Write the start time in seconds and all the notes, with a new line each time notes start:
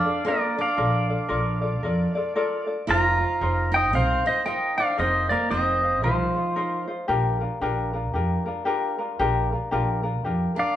Already playing: D4 D5 F5
0.05 F4 A4 D5
0.25 A#3 F4 A4 A#4 D5
0.58 D4 F4 A4 D5 F5
0.77 A#1 F4 A4 A#4 D5
1.10 F4 A4 D5
1.29 A#1 F4 A4 A#4 D5
1.62 F4 A4 D5
1.83 F2 F4 A4 A#4 D5
2.15 F4 A4 D5
2.35 F4 A4 A#4 D5
2.67 F4 A4 D5
2.87 F1 D#4 F4 A#4 C5 F5 A#5
3.20 D#4 F4 C5
3.41 F1 D#4 F4 A#4 C5
3.72 D#4 F4 C5 G5
3.76 D#5
3.93 C2 C4 D#4 F4 A#4 C5 F5
4.26 C4 D#4 F4 C5 D#5
4.46 D#4 F4 A#4 C5 D#5 G5
4.77 D4 D#4 F4 C5 D5 F5
4.98 F1 C4 D#4 F4 A#4 C5 D#5
5.29 A#3 D#4 F4 A#4 C5 D5
5.50 F1 C4 D#4 F4 A#4 C5 D#5
5.82 D#4 F4 C5
6.02 C2 F3 D#4 F4 A#4 C5
6.34 D#4 F4 C5
6.56 D#4 F4 A#4 C5
6.87 D#4 F4 C5
7.08 A#1 D4 F4 G4 A#4
7.40 D4 F4 A#4
7.61 A#1 D4 F4 G4 A#4
7.93 D4 F4 A#4
8.13 F2 D4 F4 G4 A#4
8.46 D4 F4 A#4
8.65 D4 F4 G4 A#4
8.98 D4 F4 A#4
9.19 A#1 D4 F4 G4 A#4
9.52 D4 F4 A#4
9.71 A#1 D4 F4 G4 A#4
10.03 D4 F4 A#4
10.24 F2 D4 F4 G4 A#4
10.55 D4 F4 A#4
10.59 D5 F5